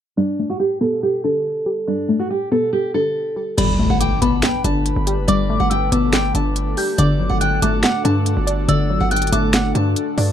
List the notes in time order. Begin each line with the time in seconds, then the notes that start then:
0.17 G3 D4
0.39 A3
0.50 F#4
0.60 G4
0.81 B3 A4
1.03 G4
1.24 D4 A4
1.66 G4
1.87 G3 D4
2.09 A3
2.19 F#4
2.31 G4
2.52 B3 A4
2.73 G4
2.94 D4 A4
3.36 G4
3.57 G1 G3 A3 D4 A4 B4 D5 B5, closed hi-hat, crash, impact
3.79 A3
3.90 G1 F#5
4.00 G5 D6, closed hi-hat
4.22 G1 B3 A5 B5, closed hi-hat
4.42 G5, finger snap, snare, closed hi-hat
4.64 G1 D4 A5, closed hi-hat
4.86 closed hi-hat
4.96 G1
5.07 G4, closed hi-hat
5.18 F#1
5.28 G1 G3 D5 D6, closed hi-hat
5.50 A3
5.60 G1 F#5
5.70 G5 E6, closed hi-hat
5.92 G1 B3 A5 D6, closed hi-hat
6.13 G5, finger snap, snare, closed hi-hat
6.35 G1 D4 A5, closed hi-hat
6.56 closed hi-hat
6.77 G4 G6, open hi-hat
6.98 G1 D3 F#4 D5 D6, closed hi-hat
7.20 F#3
7.29 G1 F#5
7.41 G5 F#6, closed hi-hat
7.62 G1 A3 A5 D6, closed hi-hat
7.83 F#5, finger snap, snare, closed hi-hat
8.05 G2 D4 A5, closed hi-hat
8.26 closed hi-hat
8.37 G1
8.47 D5, closed hi-hat
8.68 G1 D3 D5 E6, closed hi-hat
8.90 F#3
9.00 G1 F#5
9.11 G5 F#6, closed hi-hat
9.16 closed hi-hat
9.22 closed hi-hat
9.27 closed hi-hat
9.32 G1 A3 A5 D6, closed hi-hat
9.53 F#5, finger snap, snare, closed hi-hat
9.75 G2 D4 A5, closed hi-hat
9.96 closed hi-hat
10.18 G2 D5, open hi-hat